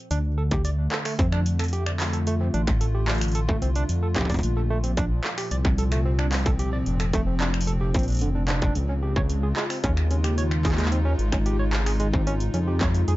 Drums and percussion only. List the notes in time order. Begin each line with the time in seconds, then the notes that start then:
0.11 closed hi-hat
0.51 kick, closed hi-hat
0.65 closed hi-hat
0.92 clap
1.05 finger snap, open hi-hat
1.19 kick, closed hi-hat
1.32 finger snap
1.46 closed hi-hat
1.59 finger snap, closed hi-hat
1.64 closed hi-hat
1.68 closed hi-hat
1.73 closed hi-hat
1.86 finger snap
2.00 clap, open hi-hat
2.13 closed hi-hat
2.27 closed hi-hat
2.54 closed hi-hat
2.67 finger snap, kick, closed hi-hat
2.81 closed hi-hat
3.08 clap, closed hi-hat
3.11 closed hi-hat
3.15 closed hi-hat
3.18 finger snap, closed hi-hat
3.21 closed hi-hat, open hi-hat
3.25 closed hi-hat
3.28 closed hi-hat
3.32 closed hi-hat
3.35 closed hi-hat
3.49 kick
3.62 closed hi-hat
3.75 closed hi-hat
3.89 closed hi-hat
4.16 kick, clap, closed hi-hat
4.21 kick
4.25 kick
4.30 kick, closed hi-hat
4.32 closed hi-hat
4.34 kick, closed hi-hat
4.37 closed hi-hat
4.39 kick, closed hi-hat
4.41 closed hi-hat
4.43 closed hi-hat
4.84 closed hi-hat
4.97 kick, closed hi-hat
5.24 clap
5.38 finger snap, open hi-hat
5.51 closed hi-hat
5.65 finger snap, kick
5.78 closed hi-hat
5.92 finger snap, closed hi-hat
6.19 finger snap
6.32 clap, open hi-hat
6.46 kick, closed hi-hat
6.59 closed hi-hat
6.86 closed hi-hat
7.00 finger snap, closed hi-hat
7.13 kick, closed hi-hat
7.40 clap, closed hi-hat
7.54 finger snap
7.61 open hi-hat
7.67 closed hi-hat
7.94 kick, closed hi-hat
7.99 closed hi-hat
8.03 closed hi-hat
8.08 closed hi-hat
8.10 closed hi-hat
8.12 closed hi-hat
8.15 closed hi-hat
8.17 closed hi-hat
8.19 closed hi-hat
8.21 closed hi-hat
8.48 clap, closed hi-hat
8.62 kick, closed hi-hat
8.75 closed hi-hat
9.16 kick
9.30 closed hi-hat
9.56 clap
9.70 finger snap, open hi-hat
9.84 kick, closed hi-hat
9.97 finger snap
10.11 closed hi-hat
10.24 finger snap, closed hi-hat
10.38 closed hi-hat
10.51 finger snap
10.65 kick, clap, open hi-hat
10.72 clap
10.78 clap, closed hi-hat
10.85 clap
10.92 closed hi-hat
11.19 closed hi-hat
11.32 finger snap, kick, closed hi-hat
11.46 closed hi-hat
11.73 clap, closed hi-hat
11.86 finger snap, open hi-hat
12.00 closed hi-hat
12.14 kick
12.27 closed hi-hat
12.40 closed hi-hat
12.54 closed hi-hat
12.81 kick, clap, closed hi-hat
12.94 closed hi-hat
13.08 closed hi-hat